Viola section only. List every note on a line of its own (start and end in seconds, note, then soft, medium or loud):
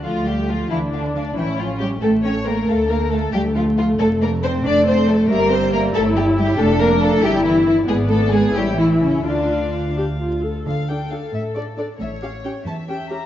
0.04 0.67 A3 medium
0.71 1.36 D4 medium
1.37 2.03 C#4 medium
2.03 4.61 A3 medium
4.66 5.29 A3 medium
5.31 5.95 G3 medium
5.95 6.59 E4 medium
6.59 7.23 D4 medium
7.24 7.88 E4 medium
7.88 8.54 B3 medium
8.55 9.26 E4 medium
9.26 9.91 F4 medium
9.97 10.05 G4 medium
10.20 10.43 F4 medium
10.44 10.67 A4 medium
10.90 10.97 D4 soft
10.90 10.97 A4 soft
11.12 11.19 D4 soft
11.12 11.19 A4 soft
11.57 11.64 D4 soft
11.57 11.64 A4 soft
11.78 11.85 D4 soft
11.78 11.85 A4 soft
12.23 12.30 C#4 soft
12.23 12.30 G4 soft
12.45 12.52 C#4 soft
12.45 12.52 G4 soft
12.89 12.96 C#4 soft
12.89 12.96 G4 soft
13.11 13.18 C#4 soft
13.11 13.18 G4 soft